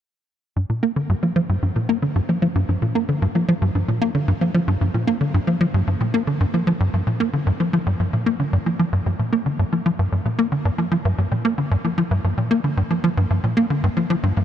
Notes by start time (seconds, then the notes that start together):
0.56 G2
0.69 A#2
0.83 A#3
0.96 D3
1.09 G2
1.23 F3
1.36 F3
1.49 G2
1.62 G2
1.76 A#2
1.89 A#3
2.02 D3
2.15 G2
2.29 F3
2.42 F3
2.55 G2
2.69 G2
2.82 A#2
2.95 A#3
3.09 D3
3.22 G2
3.35 F3
3.48 F3
3.62 G2
3.75 G2
3.88 A#2
4.01 A#3
4.15 D3
4.28 G2
4.41 F3
4.54 F3
4.68 G2
4.81 G2
4.94 A#2
5.07 A#3
5.21 D3
5.34 G2
5.47 F3
5.61 F3
5.74 G2
5.87 G2
6.00 A#2
6.14 A#3
6.27 D3
6.40 G2
6.54 F3
6.67 F3
6.80 G2
6.93 G2
7.07 A#2
7.20 A#3
7.33 D3
7.47 G2
7.60 F3
7.73 F3
7.86 G2
8.00 G2
8.13 A#2
8.26 A#3
8.40 D3
8.53 G2
8.66 F3
8.79 F3
8.93 G2
9.06 G2
9.19 A#2
9.32 A#3
9.46 D3
9.59 G2
9.72 F3
9.86 F3
9.99 G2
10.12 G2
10.25 A#2
10.38 A#3
10.52 D3
10.65 G2
10.78 F3
10.91 F3
11.05 G2
11.18 G2
11.31 A#2
11.45 A#3
11.58 D3
11.71 G2
11.84 F3
11.98 F3
12.11 G2
12.24 G2
12.37 A#2
12.51 A#3
12.64 D3
12.77 G2
12.90 F3
13.04 F3
13.17 G2
13.30 G2
13.44 A#2
13.57 A#3
13.70 D3
13.84 G2
13.97 F3
14.10 F3
14.23 G2
14.37 G2